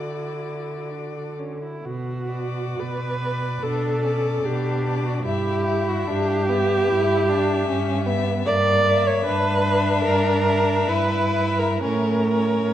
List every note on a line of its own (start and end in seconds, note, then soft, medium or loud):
0.00 1.60 D3 soft
0.00 0.92 E4 soft
0.00 1.65 F#4 soft
0.00 1.34 D5 soft
0.90 1.41 D4 soft
1.39 1.63 C#4 soft
1.63 1.87 E4 soft
1.84 2.68 B2 medium
1.84 2.81 F#4 medium
2.31 3.19 D5 soft
2.79 3.52 B2 medium
2.79 3.64 B4 medium
3.21 4.02 D5 soft
3.61 4.34 B2 medium
3.61 4.06 D4 medium
3.61 4.46 A4 medium
4.03 4.46 C#4 medium
4.03 4.82 D5 medium
4.43 5.14 B2 medium
4.43 5.25 D4 medium
4.43 5.07 G4 medium
4.85 5.24 D5 medium
5.05 5.24 F#4 medium
5.24 5.97 G2 medium
5.24 6.09 E4 medium
5.24 5.89 G4 medium
5.24 5.65 E5 medium
5.67 6.47 E5 medium
5.88 6.10 F#4 medium
6.07 6.78 G2 medium
6.07 6.51 D4 medium
6.07 8.27 G4 loud
6.48 6.90 B3 medium
6.48 7.27 E5 medium
6.88 7.59 G2 medium
6.88 7.31 E4 medium
7.28 7.68 D4 medium
7.28 8.05 E5 medium
7.68 8.37 G2 medium
7.68 8.07 C#4 medium
8.06 8.48 B3 medium
8.06 8.45 E5 medium
8.46 9.16 G2 medium
8.46 9.24 A#3 medium
8.46 9.08 D5 loud
8.86 9.63 E5 medium
9.07 9.25 C#5 loud
9.24 9.95 G2 medium
9.24 10.90 D4 loud
9.24 10.03 B4 loud
9.65 10.44 E5 medium
10.04 10.78 G2 medium
10.04 10.90 A#4 loud
10.46 11.32 E5 medium
10.88 11.71 G2 medium
10.88 11.83 E4 medium
10.88 11.60 B4 loud
11.34 11.82 E5 medium
11.59 11.82 A#4 medium
11.82 12.68 A2 medium
11.82 12.73 C#4 medium
11.82 12.73 A#4 medium
11.82 12.31 C#5 medium
12.32 12.73 C#5 medium